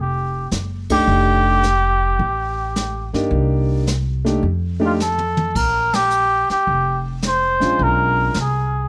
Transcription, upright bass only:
0.00 0.48 F1 medium
0.52 1.04 F#1 medium
1.07 2.15 F1 medium
2.19 3.10 A1 medium
3.14 3.30 G2 medium
3.31 4.39 C2 medium
4.43 5.51 F2 medium
5.55 6.46 A#1 medium
6.50 muted upright bass stroke soft
6.67 7.58 F1 medium
7.62 7.78 A#1 medium
7.79 8.31 B1 medium
8.35 8.87 C2 medium

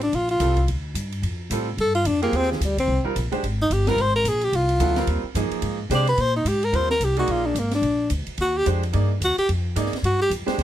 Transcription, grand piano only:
0.40 0.55 G3 medium
0.40 0.55 C4 medium
0.40 0.56 F4 medium
0.40 0.56 A4 medium
1.51 1.66 G3 medium
1.51 1.66 C4 medium
1.51 1.66 F4 medium
1.51 1.66 A4 medium
2.22 2.58 C4 medium
2.22 2.59 F4 medium
2.22 2.58 G4 medium
2.22 2.59 G#4 medium
3.04 3.14 G3 medium
3.04 3.14 C4 medium
3.04 3.15 F4 medium
3.04 3.15 A#4 medium
3.32 3.42 G#3 medium
3.32 3.42 D4 medium
3.32 3.42 G4 medium
3.32 3.42 C5 medium
3.88 3.97 G3 medium
3.88 3.97 C4 medium
3.88 3.98 F4 medium
3.88 3.98 A#4 medium
4.80 4.95 F#3 medium
4.80 4.95 B3 medium
4.80 4.95 E4 medium
4.80 4.95 A4 medium
4.96 5.21 G3 medium
4.96 5.21 C4 medium
4.96 5.21 F4 medium
4.96 5.21 A#4 medium
5.35 5.76 F3 medium
5.35 5.76 A#3 medium
5.35 5.76 D#4 medium
5.35 5.77 G#4 medium
5.91 6.06 G#3 medium
5.91 6.06 D4 medium
5.91 6.06 G4 medium
5.91 6.06 C5 medium
6.72 6.88 G3 medium
6.72 6.88 C4 medium
6.72 6.88 F4 medium
6.72 6.88 A#4 medium
7.17 7.54 A#3 medium
7.17 7.54 D#4 medium
7.17 7.54 G#4 medium
7.17 7.54 D5 medium
8.66 8.81 G#3 medium
8.66 8.81 D4 medium
8.66 8.81 G4 medium
8.66 8.81 C5 medium
8.93 9.08 A#3 medium
8.93 9.08 D#4 medium
8.93 9.09 G#4 soft
8.93 9.09 D5 medium
9.76 9.91 A#3 medium
9.76 9.91 D#4 medium
9.76 9.91 G#4 medium
9.76 9.91 D5 medium
10.46 10.63 G#3 medium
10.46 10.63 D4 medium
10.46 10.63 G4 medium
10.46 10.63 C5 medium

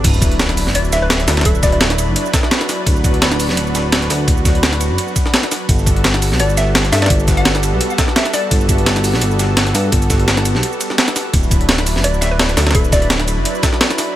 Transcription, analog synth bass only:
0.04 0.68 D1 loud
0.66 0.76 F#1 medium
0.74 1.26 D1 medium
1.27 1.43 D2 loud
1.45 2.09 D1 medium
2.08 2.15 F#1 medium
2.86 3.50 D1 loud
3.49 3.59 F#1 medium
3.57 4.09 D1 medium
4.10 4.26 D2 loud
4.28 4.92 D1 loud
4.90 4.97 F#1 medium
5.69 6.33 G1 loud
6.31 6.41 B1 medium
6.40 6.91 G1 medium
6.92 7.08 G2 loud
7.10 7.74 G1 loud
7.73 7.80 B1 medium
8.51 9.15 G1 loud
9.14 9.23 B1 medium
9.22 9.73 G1 medium
9.74 9.91 G2 loud
9.92 10.56 G1 loud
10.55 10.62 B1 medium
11.33 11.97 D1 medium
11.96 12.06 F#1 medium
12.04 12.56 D1 medium
12.57 12.73 D2 loud
12.75 13.39 D1 loud
13.37 13.44 F#1 medium

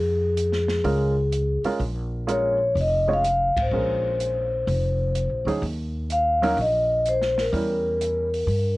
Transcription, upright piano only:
0.84 1.13 G#3 medium
0.84 1.14 C#4 soft
0.84 1.14 F4 soft
0.84 1.14 A#4 medium
1.65 1.78 G#3 medium
1.65 1.79 C#4 medium
1.65 1.79 F4 medium
1.65 1.79 A#4 medium
2.27 2.57 G#3 medium
2.27 2.57 C#4 medium
2.27 2.57 F4 medium
2.27 2.58 A#4 medium
3.08 3.22 G#3 medium
3.08 3.22 C#4 medium
3.08 3.22 F4 medium
3.08 3.22 C#5 medium
3.73 4.46 G#3 medium
3.73 4.46 C#4 soft
3.73 4.46 F4 soft
3.73 4.46 A#4 medium
5.47 5.61 F#3 medium
5.47 5.61 C#4 medium
5.47 5.61 D#4 medium
5.47 5.61 G#4 medium
6.42 6.56 F#3 medium
6.42 6.56 C#4 medium
6.42 6.56 D#4 medium
6.42 6.56 A#4 medium
7.52 8.26 G3 medium
7.52 8.26 C#4 soft
7.52 8.26 E4 soft
7.52 8.26 A#4 medium

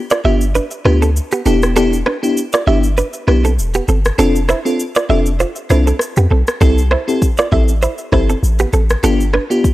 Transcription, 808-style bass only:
0.25 0.59 G1 medium
0.85 1.20 D2 medium
1.46 2.03 E1 loud
2.67 3.02 G1 loud
3.28 3.60 B1 medium
3.58 3.80 E1 medium
3.88 4.11 G1 medium
4.19 4.53 F1 loud
5.10 5.44 F1 medium
5.70 5.93 C2 loud
6.17 6.27 F2 medium
6.31 6.43 B1 medium
6.61 6.96 C2 loud
7.52 7.87 A1 medium
8.12 8.35 G1 medium
8.43 8.65 A1 loud
8.73 8.96 A1 loud
9.03 9.38 G1 loud

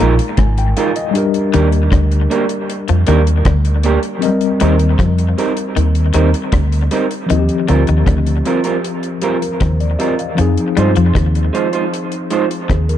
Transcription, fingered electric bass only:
0.01 0.18 A#1 loud
0.38 0.72 G#1 medium
1.55 1.88 D#2 loud
1.93 2.26 D2 loud
2.90 3.06 F2 medium
3.09 3.42 D#2 medium
3.46 3.97 D2 medium
4.62 4.95 D#2 loud
5.00 5.33 F2 loud
5.77 6.10 D#2 medium
6.15 6.32 D#2 loud
6.54 6.87 D2 loud
7.31 7.48 D#2 loud
7.70 7.86 D2 loud
7.89 8.05 D#2 medium
8.07 8.41 D2 loud
9.62 9.95 D#2 loud
10.39 10.56 F2 medium
10.77 10.94 G2 medium
10.97 11.13 F2 medium
11.16 11.49 D#2 medium
12.70 12.98 D#2 medium

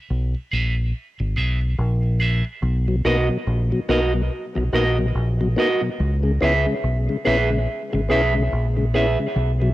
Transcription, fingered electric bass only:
0.10 0.33 B1 loud
0.53 0.91 A#1 medium
1.20 1.35 G#1 medium
1.36 1.75 B1 medium
1.79 2.41 A#1 medium
2.62 3.02 B1 loud
3.05 3.28 B1 medium
3.47 3.70 A#1 loud
3.89 4.28 B1 medium
4.57 4.72 B1 medium
4.73 5.12 A#1 medium
5.15 5.54 A#1 medium
6.00 6.39 C#2 loud
6.42 6.65 C#2 medium
6.84 7.07 B1 loud
7.27 7.65 A#1 medium
7.94 8.09 G#1 medium
8.11 8.50 B1 medium
8.52 9.15 A#1 medium
9.36 9.74 B1 loud

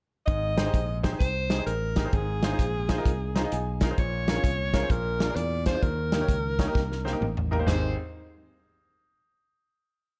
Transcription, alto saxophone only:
0.26 0.99 D#5 loud
1.19 1.63 C5 loud
1.66 2.15 A#4 medium
2.14 3.82 G#4 medium
3.99 4.93 C#5 medium
4.91 5.38 A#4 loud
5.36 5.66 D5 loud
5.67 5.84 C5 medium
5.83 7.21 A#4 medium
7.67 7.95 C5 medium

